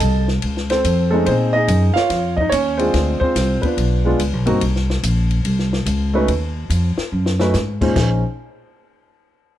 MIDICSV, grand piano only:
0, 0, Header, 1, 2, 480
1, 0, Start_track
1, 0, Tempo, 418702
1, 1454, Time_signature, 4, 2, 24, 8
1, 10983, End_track
2, 0, Start_track
2, 0, Title_t, "Grand piano"
2, 0, Program_c, 0, 0
2, 0, Note_on_c, 0, 69, 58
2, 0, Note_on_c, 0, 75, 63
2, 0, Note_on_c, 0, 81, 107
2, 299, Note_off_c, 0, 81, 0
2, 307, Note_off_c, 0, 69, 0
2, 309, Note_off_c, 0, 75, 0
2, 803, Note_on_c, 0, 72, 94
2, 820, Note_on_c, 0, 69, 58
2, 822, Note_on_c, 0, 60, 57
2, 1250, Note_off_c, 0, 69, 0
2, 1261, Note_off_c, 0, 60, 0
2, 1267, Note_on_c, 0, 69, 79
2, 1280, Note_on_c, 0, 56, 68
2, 1287, Note_on_c, 0, 60, 55
2, 1296, Note_on_c, 0, 61, 52
2, 1299, Note_off_c, 0, 72, 0
2, 1301, Note_on_c, 0, 63, 68
2, 1302, Note_on_c, 0, 57, 56
2, 1432, Note_off_c, 0, 69, 0
2, 1434, Note_off_c, 0, 56, 0
2, 1438, Note_off_c, 0, 60, 0
2, 1442, Note_off_c, 0, 61, 0
2, 1445, Note_off_c, 0, 63, 0
2, 1445, Note_on_c, 0, 72, 96
2, 1451, Note_off_c, 0, 57, 0
2, 1474, Note_on_c, 0, 68, 64
2, 1476, Note_on_c, 0, 60, 66
2, 1476, Note_on_c, 0, 63, 67
2, 1517, Note_off_c, 0, 72, 0
2, 1753, Note_on_c, 0, 75, 109
2, 1755, Note_off_c, 0, 68, 0
2, 1756, Note_off_c, 0, 60, 0
2, 1756, Note_off_c, 0, 63, 0
2, 1785, Note_on_c, 0, 63, 70
2, 1794, Note_on_c, 0, 68, 68
2, 2220, Note_on_c, 0, 77, 103
2, 2222, Note_off_c, 0, 63, 0
2, 2227, Note_off_c, 0, 68, 0
2, 2253, Note_off_c, 0, 75, 0
2, 2258, Note_on_c, 0, 65, 69
2, 2263, Note_on_c, 0, 73, 63
2, 2678, Note_off_c, 0, 77, 0
2, 2698, Note_off_c, 0, 65, 0
2, 2701, Note_off_c, 0, 73, 0
2, 2713, Note_on_c, 0, 75, 82
2, 2758, Note_on_c, 0, 63, 74
2, 2860, Note_on_c, 0, 73, 94
2, 2892, Note_off_c, 0, 75, 0
2, 2898, Note_off_c, 0, 63, 0
2, 2903, Note_on_c, 0, 61, 68
2, 3165, Note_off_c, 0, 73, 0
2, 3181, Note_on_c, 0, 72, 83
2, 3188, Note_off_c, 0, 61, 0
2, 3193, Note_on_c, 0, 56, 66
2, 3198, Note_on_c, 0, 60, 57
2, 3203, Note_on_c, 0, 62, 53
2, 3210, Note_on_c, 0, 65, 64
2, 3229, Note_on_c, 0, 68, 60
2, 3651, Note_off_c, 0, 72, 0
2, 3663, Note_off_c, 0, 68, 0
2, 3668, Note_on_c, 0, 72, 95
2, 3689, Note_off_c, 0, 60, 0
2, 3690, Note_off_c, 0, 65, 0
2, 3707, Note_on_c, 0, 60, 63
2, 3708, Note_on_c, 0, 65, 57
2, 3812, Note_off_c, 0, 56, 0
2, 3817, Note_off_c, 0, 62, 0
2, 4142, Note_off_c, 0, 60, 0
2, 4143, Note_off_c, 0, 65, 0
2, 4148, Note_on_c, 0, 71, 68
2, 4170, Note_off_c, 0, 72, 0
2, 4182, Note_on_c, 0, 59, 52
2, 4183, Note_on_c, 0, 62, 52
2, 4187, Note_on_c, 0, 65, 49
2, 4632, Note_off_c, 0, 59, 0
2, 4639, Note_off_c, 0, 62, 0
2, 4641, Note_off_c, 0, 65, 0
2, 4642, Note_on_c, 0, 56, 64
2, 4649, Note_on_c, 0, 59, 55
2, 4656, Note_on_c, 0, 62, 58
2, 4659, Note_on_c, 0, 65, 69
2, 4793, Note_off_c, 0, 56, 0
2, 4797, Note_off_c, 0, 59, 0
2, 4800, Note_off_c, 0, 62, 0
2, 4802, Note_off_c, 0, 65, 0
2, 5069, Note_off_c, 0, 71, 0
2, 5111, Note_on_c, 0, 58, 65
2, 5112, Note_on_c, 0, 60, 67
2, 5119, Note_on_c, 0, 63, 58
2, 5126, Note_on_c, 0, 66, 74
2, 5267, Note_off_c, 0, 58, 0
2, 5268, Note_off_c, 0, 60, 0
2, 5271, Note_off_c, 0, 63, 0
2, 5275, Note_off_c, 0, 66, 0
2, 7034, Note_on_c, 0, 57, 74
2, 7043, Note_on_c, 0, 61, 56
2, 7046, Note_on_c, 0, 63, 65
2, 7054, Note_on_c, 0, 66, 62
2, 7055, Note_on_c, 0, 71, 76
2, 7189, Note_off_c, 0, 57, 0
2, 7194, Note_off_c, 0, 61, 0
2, 7195, Note_off_c, 0, 63, 0
2, 7199, Note_off_c, 0, 66, 0
2, 7200, Note_off_c, 0, 71, 0
2, 8481, Note_on_c, 0, 57, 68
2, 8482, Note_on_c, 0, 61, 54
2, 8489, Note_on_c, 0, 63, 56
2, 8490, Note_on_c, 0, 66, 57
2, 8498, Note_on_c, 0, 71, 70
2, 8634, Note_off_c, 0, 57, 0
2, 8634, Note_off_c, 0, 61, 0
2, 8638, Note_off_c, 0, 63, 0
2, 8638, Note_off_c, 0, 66, 0
2, 8642, Note_off_c, 0, 71, 0
2, 8954, Note_on_c, 0, 46, 62
2, 8954, Note_on_c, 0, 56, 51
2, 8963, Note_on_c, 0, 61, 58
2, 8963, Note_on_c, 0, 63, 55
2, 8968, Note_on_c, 0, 65, 56
2, 8970, Note_on_c, 0, 72, 75
2, 9105, Note_off_c, 0, 61, 0
2, 9109, Note_off_c, 0, 63, 0
2, 9110, Note_off_c, 0, 46, 0
2, 9110, Note_off_c, 0, 56, 0
2, 9117, Note_off_c, 0, 65, 0
2, 9118, Note_off_c, 0, 72, 0
2, 9122, Note_on_c, 0, 61, 59
2, 9126, Note_on_c, 0, 63, 52
2, 9132, Note_on_c, 0, 68, 48
2, 9136, Note_on_c, 0, 72, 57
2, 9409, Note_off_c, 0, 61, 0
2, 9411, Note_off_c, 0, 63, 0
2, 9414, Note_off_c, 0, 68, 0
2, 9415, Note_off_c, 0, 72, 0
2, 10983, End_track
0, 0, End_of_file